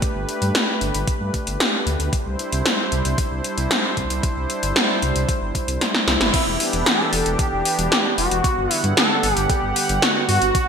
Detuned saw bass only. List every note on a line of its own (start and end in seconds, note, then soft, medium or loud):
0.15 0.25 G1 medium
0.42 0.52 G2 medium
0.81 0.91 G1 medium
0.95 1.04 G1 medium
1.21 1.31 G2 medium
1.47 1.57 G1 medium
1.86 1.96 D2 medium
2.00 2.10 D2 medium
2.26 2.36 C2 medium
2.52 2.62 C2 medium
2.92 3.02 C2 medium
3.05 3.15 C2 medium
3.31 3.41 C2 medium
3.58 3.67 C2 medium
3.97 4.07 C2 medium
4.10 4.20 C2 medium
4.37 4.46 C2 medium
4.63 4.73 G1 medium
5.02 5.12 C2 medium
5.16 5.25 C2 medium
5.42 5.52 G1 medium
5.68 5.78 C2 medium
6.07 6.17 C2 medium
6.21 6.31 G1 medium
6.47 6.57 E1 medium
6.73 6.83 E1 medium
7.13 7.23 E1 medium
7.26 7.36 E1 medium
7.52 7.62 E1 medium
7.78 7.88 E1 medium
8.18 8.28 E1 medium
8.31 8.41 E1 medium
8.57 8.67 G1 medium
8.84 8.94 G2 medium
9.23 9.33 G1 medium
9.37 9.47 G1 medium
9.63 9.73 G1 medium
9.89 9.99 G1 medium
10.29 10.39 G2 medium
10.42 10.52 G1 medium